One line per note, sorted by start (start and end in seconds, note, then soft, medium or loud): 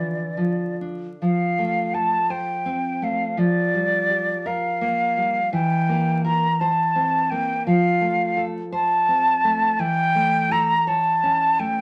0.00 1.18 D3 soft
0.00 0.37 E3 soft
0.00 0.19 F3 soft
0.00 0.78 D5 medium
0.37 1.06 F3 soft
0.81 1.21 D4 soft
1.22 3.35 F3 medium
1.22 1.96 F5 medium
1.59 2.16 A3 soft
1.94 2.52 A4 medium
1.94 2.32 A5 medium
2.30 2.88 C5 medium
2.30 3.05 G5 medium
2.66 3.24 C4 medium
3.02 3.39 A3 medium
3.02 3.40 F5 medium
3.37 5.49 F3 medium
3.37 4.48 D5 medium
3.74 4.32 G3 soft
4.09 4.68 G4 medium
4.46 5.03 A#4 medium
4.46 5.53 F5 medium
4.81 5.39 A#3 medium
5.17 5.53 G3 soft
5.53 7.62 E3 medium
5.53 6.23 G5 medium
5.89 6.46 A#3 medium
6.24 6.61 A#4 medium
6.24 6.62 A#5 medium
6.60 7.17 C5 medium
6.60 7.32 A5 medium
6.96 7.52 C4 medium
7.30 7.67 A#3 medium
7.30 7.66 G5 medium
7.67 9.76 F3 medium
7.67 8.46 F5 medium
8.01 8.58 A3 medium
8.37 8.72 A4 medium
8.72 9.30 C5 medium
8.72 9.81 A5 medium
9.08 9.66 C4 medium
9.44 9.80 A3 medium
9.79 11.81 E3 medium
9.79 10.53 G5 loud
10.15 10.74 A3 medium
10.51 10.87 A4 medium
10.51 10.90 A#5 medium
10.87 11.44 C#5 medium
10.87 11.61 A5 medium
11.23 11.80 C#4 medium
11.59 11.81 A3 medium
11.59 11.81 G5 medium